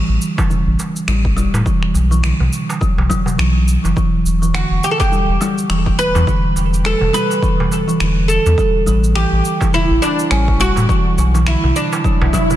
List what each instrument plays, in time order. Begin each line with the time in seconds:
0.09 sub bass A1
0.22 cabasa
0.38 kalimba E3, kick, darbuka ka, darbuka tek, cabasa
0.50 kalimba C#3, cabasa
0.67 sub bass A1
0.79 darbuka ka, cabasa
0.96 cabasa
1.08 sub bass A1, kalimba G3, finger snap, cabasa
1.25 kick
1.37 kalimba G3, cabasa
1.53 sub bass A2, darbuka ka, darbuka tek, cabasa
1.66 kalimba E3, kick, cabasa
1.83 finger snap
1.94 sub bass B1, darbuka ka, cabasa
2.11 kalimba E3, cabasa
2.23 kalimba D3, finger snap, cabasa
2.40 sub bass B1, darbuka dum
2.53 cabasa
2.69 darbuka ka, darbuka tek, cabasa
2.81 kalimba F#3, kick, cabasa
2.98 sub bass B1, darbuka tek, darbuka dum
3.10 kalimba F#3, kick, darbuka ka, cabasa
3.26 darbuka dum, cabasa
3.38 sub bass B1, kalimba E3, finger snap, cabasa
3.68 cabasa
3.84 sub bass F#1, kalimba E3, darbuka ka, cabasa
3.96 kalimba E3, kick, cabasa
4.25 sub bass E1, cabasa
4.42 kalimba E3, cabasa
4.54 kalimba D3, oud F#4, finger snap, cabasa
4.71 sub bass E1
4.84 oud G4, cabasa
4.91 oud A4
5.00 oud G4, kick, darbuka ka, darbuka tek, cabasa
5.12 kalimba G3, cabasa
5.28 sub bass E1
5.40 kalimba G3, darbuka ka, cabasa
5.58 cabasa
5.70 sub bass E1, kalimba E3, finger snap, cabasa
5.86 kick
5.99 oud B4, cabasa
6.15 sub bass E2, kalimba E3, darbuka ka, darbuka tek, cabasa
6.27 kalimba D3, kick, cabasa
6.56 sub bass E1, darbuka ka, cabasa
6.74 cabasa
6.84 kalimba G3, oud A4, finger snap, cabasa
7.01 sub bass E1, darbuka dum
7.13 kalimba G3, oud B4, cabasa
7.30 darbuka ka, cabasa
7.42 kalimba E3, kick, cabasa
7.59 sub bass E1, darbuka tek, darbuka dum
7.72 darbuka ka, cabasa
7.88 kalimba E3, cabasa
8.00 sub bass E1, kalimba D3, finger snap, cabasa
8.28 oud A4, cabasa
8.46 sub bass E2, darbuka ka, cabasa
8.58 kalimba G3, kick, cabasa
8.86 sub bass A1, kalimba G3, cabasa
9.04 cabasa
9.15 kalimba E3, oud G4, finger snap, cabasa
9.32 sub bass A1
9.45 cabasa
9.61 kalimba E3, kick, darbuka ka, darbuka tek, cabasa
9.73 kalimba C#3, oud E4, cabasa
9.90 sub bass A1
10.02 oud D4, darbuka ka, cabasa
10.19 cabasa
10.31 sub bass A1, kalimba G3, oud C#4, finger snap, cabasa
10.48 kick
10.60 kalimba G3, oud F#4, cabasa
10.76 sub bass A2, darbuka ka, darbuka tek, cabasa
10.89 kalimba E3, kick, cabasa
11.18 sub bass B1, darbuka ka, cabasa
11.34 kalimba E3, darbuka tek, cabasa
11.47 kalimba D3, oud E4, finger snap, cabasa
11.64 sub bass B1, darbuka dum
11.76 oud D4, cabasa
11.93 darbuka ka, darbuka tek, cabasa
12.04 kalimba F#3, kick, swell, cabasa
12.21 sub bass B1, darbuka tek, darbuka dum
12.33 kalimba F#3, kick, darbuka ka, cabasa
12.50 darbuka dum, cabasa